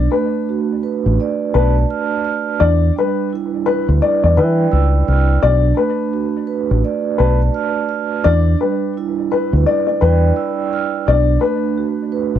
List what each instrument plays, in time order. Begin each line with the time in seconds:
Already playing: vibraphone D4, upright piano D5
0.11 vibraphone A3, upright piano B4
0.49 vibraphone F#4
0.83 vibraphone B4
1.06 fingered electric bass A1
1.20 vibraphone D5
1.54 fingered electric bass B1, upright piano B4, vibraphone A5
1.90 vibraphone F6
2.25 vibraphone F6
2.60 fingered electric bass E2, vibraphone D4, upright piano D5
2.96 vibraphone G3, upright piano B4
3.33 vibraphone E4
3.66 upright piano B4, vibraphone B4
3.88 fingered electric bass D2
4.02 upright piano D5, vibraphone D5
4.24 fingered electric bass E2, upright piano D5
4.37 fingered electric bass E3, upright piano B4, vibraphone G5
4.71 fingered electric bass C#2, vibraphone E6
5.08 fingered electric bass C2, vibraphone F6
5.42 fingered electric bass B1, vibraphone D4, upright piano D5
5.75 vibraphone A3, upright piano B4
6.13 vibraphone F#4
6.47 vibraphone B4
6.71 fingered electric bass A1
6.85 vibraphone D5
7.18 fingered electric bass B1, upright piano B4, vibraphone A5
7.55 vibraphone F6
7.89 vibraphone F6
8.24 fingered electric bass E2, vibraphone D4, upright piano D5
8.60 vibraphone G3, upright piano B4
8.97 vibraphone E4
9.31 vibraphone B4, upright piano B4
9.53 fingered electric bass D2
9.66 upright piano D5, vibraphone D5
9.87 upright piano D5
10.01 fingered electric bass E2, upright piano B4, vibraphone G5
10.36 vibraphone E6
10.73 vibraphone F6
11.07 fingered electric bass B1, vibraphone D4, upright piano D5
11.40 vibraphone A3, upright piano B4
11.78 vibraphone F#4
12.12 vibraphone B4
12.36 fingered electric bass A1